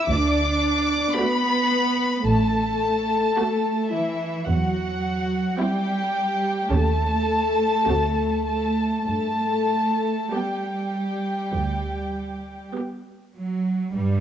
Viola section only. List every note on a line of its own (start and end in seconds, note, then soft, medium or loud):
1.18 2.00 A3 medium
1.18 2.01 F#4 medium
3.39 4.24 A3 medium
3.39 4.24 F#4 medium
5.60 6.45 C4 medium
5.60 6.45 E4 medium
6.72 7.61 C#4 medium
6.72 7.61 G4 medium
7.88 8.79 C4 soft
7.88 8.79 F#4 soft
10.33 11.26 B3 soft
10.33 11.26 G4 medium
12.76 13.68 B3 soft
12.76 13.68 G4 soft